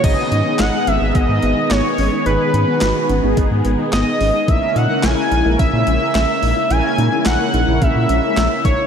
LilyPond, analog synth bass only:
\new Staff \with { instrumentName = "Analog synth bass" } { \clef bass \time 4/4 \key gis \minor \tempo 4 = 108 gis,,16 r16 gis,16 r16 gis,,16 r16 gis,,16 gis,,16 gis,,16 gis,16 gis,,16 r16 gis,,16 r16 gis,,16 r16 | gis,,16 r16 gis,16 r16 gis,,16 r16 gis,,16 gis,,16 gis,,16 gis,16 gis,,16 r16 gis,,16 r16 gis,,16 r16 | ais,,16 r16 ais,16 r16 ais,,16 r16 ais,,16 ais,,16 ais,,16 ais,16 ais,,16 r16 ais,,16 r16 ais,,16 r16 | ais,,16 r16 ais,16 r16 ais,,16 r16 ais,,16 ais,,16 ais,,16 ais,16 ais,,16 r16 ais,,16 r16 ais,,16 r16 | }